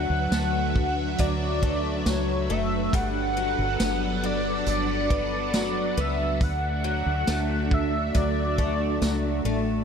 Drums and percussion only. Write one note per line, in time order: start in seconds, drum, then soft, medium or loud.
0.32 snare loud
0.32 closed hi-hat medium
0.32 tambourine medium
0.76 kick medium
1.18 kick medium
1.18 closed hi-hat medium
1.63 kick medium
2.06 snare loud
2.06 closed hi-hat medium
2.06 tambourine medium
2.93 kick loud
2.93 closed hi-hat medium
3.80 snare loud
3.80 closed hi-hat medium
3.80 tambourine medium
4.66 closed hi-hat medium
5.10 kick medium
5.54 snare loud
5.54 closed hi-hat medium
5.54 tambourine medium
6.41 kick loud
6.41 closed hi-hat medium
7.27 snare loud
7.27 closed hi-hat medium
7.27 tambourine medium
7.71 kick loud
8.14 kick medium
8.14 closed hi-hat medium
8.58 kick medium
9.02 snare loud
9.02 closed hi-hat medium
9.02 tambourine medium